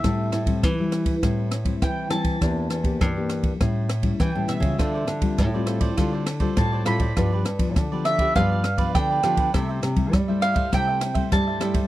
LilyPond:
<<
  \new Staff \with { instrumentName = "Mandolin" } { \time 4/4 \key c \major \tempo 4 = 101 e''4 r2 g''8 a''8~ | a''4 r2 g''8 e''8~ | e''4 r2 a''8 b''8~ | b''4 r8 e''8 f''4 g''4 |
r4. f''8 g''4 a''4 | }
  \new Staff \with { instrumentName = "Cavaquinho" } { \time 4/4 \key c \major r1 | r1 | <f' a' c'' d''>16 <a' c'' d''>16 r8. <a' c'' d''>16 <f' a' c'' d''>16 <a' c'' d''>16 <f' a' c'' d''>16 <a' c'' d''>16 r16 <a' c'' d''>8 <a' c'' d''>16 <f' a' c'' d''>16 <a' c'' d''>16 | <f' g' b' d''>16 <g' b' d''>16 r8. <g' b' d''>16 <f' g' b' d''>16 <g' b' d''>16 <f' g' b' d''>16 <g' b' d''>16 r16 <g' b' d''>8 <g' b' d''>16 <f' g' b' d''>16 <g' b' d''>16 |
<e' a' c'' e''>16 <a' c'' e''>16 r8. <a' c'' e''>16 <e' a' c'' e''>16 <a' c'' e''>16 <e' a' c'' e''>16 <a' c'' e''>16 r16 <a' c'' e''>8 <a' c'' e''>16 <e' a' c'' e''>16 <a' c'' e''>16 | }
  \new Staff \with { instrumentName = "Nylon-string guitar" } { \time 4/4 \key c \major << { <g c' e'>8. <g c' e'>8 <g c' e'>8. <g c' e'>8 r16 <g c' e'>8. <g c' e'>8 | <bes d' g'>8. <bes d' g'>8 <bes d' g'>8. <g cis' e'>8 r16 <g cis' e'>8 <g cis' e'>8 <g c' f'>16~ | <g c' f'>8. <g c' f'>8 <g c' f'>8. <g c' f'>8 r16 <g c' f'>8. <g c' f'>16 r16 | <f b d'>8 r16 <f b d'>8 <f b d'>8. <f b d'>8 r16 <f b d'>8. <f b d'>8 |
<g a e'>8. <g a e'>8 <g a e'>8. <g a e'>8. <g a e'>8. <g a e'>16 r16 | } \\ { a,4 e4 a,4 e4 | e4 e4 a,4 e4 | d4 a,4 d4 a,4 | g,4 d4 g,4 d4 |
c4 g,4 c4 g,4 | } >> }
  \new Staff \with { instrumentName = "Nylon-string guitar" } { \clef bass \time 4/4 \key c \major a,8 a,8 e4 a,4 e8 e8 | e,8 e,8 g,4 a,4 e16 a,16 b,16 cis16 | d8 d8 a,4 d4 a,8 a,8 | g,8 g,8 d4 g,4 d8 d8 |
c8 c8 g4 c4 g8 g8 | }
  \new DrumStaff \with { instrumentName = "Drums" } \drummode { \time 4/4 <bd cymr ss>8 <cymr ss>16 <bd cymr>16 <bd cymr ss>8 <cymr ss>16 <bd cymr>16 <bd cymr ss>8 <cymr ss>16 <bd cymr>16 <bd cymr ss>8 <cymr ss>16 <bd cymr>16 | <bd cymr ss>8 <cymr ss>16 <bd cymr>16 <bd cymr ss>8 <cymr ss>16 <bd cymr>16 <bd cymr ss>8 <cymr ss>16 <bd cymr>16 <bd cymr ss>8 <cymr ss>16 <bd cymr>16 | <bd cymr ss>8 <cymr ss>16 <bd cymr>16 <bd cymr ss>8 <cymr ss>16 <bd cymr>16 <bd cymr ss>8 <cymr ss>16 <bd cymr>16 <bd cymr ss>8 <cymr ss>16 <bd cymr>16 | <bd cymr ss>8 <cymr ss>16 <bd cymr>16 <bd cymr ss>8 <cymr ss>16 <bd cymr>16 <bd cymr ss>8 <cymr ss>16 <bd cymr>16 <bd cymr ss>8 <cymr ss>16 <bd cymr>16 |
<bd cymr ss>8 <cymr ss>16 <bd cymr>16 <bd cymr ss>8 <cymr ss>16 <bd cymr>16 <bd cymr ss>8 <cymr ss>16 <bd cymr>16 <bd cymr ss>8 <cymr ss>16 <bd cymr>16 | }
>>